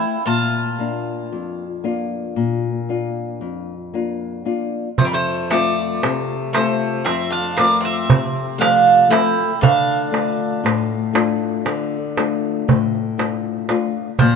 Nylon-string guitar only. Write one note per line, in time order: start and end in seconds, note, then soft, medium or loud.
0.00 0.15 A3 soft
0.00 0.15 C4 soft
0.00 0.16 E4 soft
0.26 1.28 A#2 medium
0.79 1.63 A#3 soft
0.79 1.64 D4 soft
0.79 1.64 F4 soft
1.32 2.34 F2 medium
1.84 2.68 A#3 medium
1.84 2.68 D4 soft
1.84 2.68 F4 medium
2.36 3.38 A#2 medium
2.89 3.73 A#3 soft
2.89 3.73 D4 soft
2.89 3.73 F4 soft
3.41 4.43 F2 medium
3.94 4.44 A#3 soft
3.94 4.44 D4 soft
3.94 4.45 F4 soft
4.45 4.87 A#3 soft
4.45 4.87 D4 soft
4.45 4.88 F4 soft
4.98 5.99 F2 medium
5.50 6.33 A3 soft
5.50 6.34 C4 soft
5.50 6.34 F4 soft
6.04 7.03 C3 medium
6.55 7.37 A3 soft
6.55 7.38 C4 soft
6.55 7.38 F4 medium
7.07 8.06 F2 medium
7.58 8.40 A3 soft
7.58 8.40 C4 soft
7.58 8.41 F4 medium
8.09 9.08 C3 medium
8.59 9.42 F3 medium
8.59 9.07 A3 soft
8.59 9.08 C4 soft
9.09 9.51 A3 soft
9.09 9.51 C4 soft
9.09 9.51 A4 medium
9.62 10.61 D3 medium
10.11 10.94 A3 soft
10.11 10.94 D4 soft
10.11 10.94 F4 medium
10.64 11.63 A2 medium
11.13 11.95 A3 medium
11.13 11.96 D4 soft
11.13 11.96 F4 medium
11.65 12.64 D3 medium
12.17 12.98 A3 soft
12.17 12.98 D4 soft
12.17 12.98 F4 soft
12.68 13.66 A2 medium
13.18 13.68 A3 soft
13.18 13.68 D4 soft
13.18 13.68 F4 soft
13.69 14.09 A3 soft
13.69 14.09 D4 soft
13.69 14.09 F4 medium
14.21 14.36 A#2 medium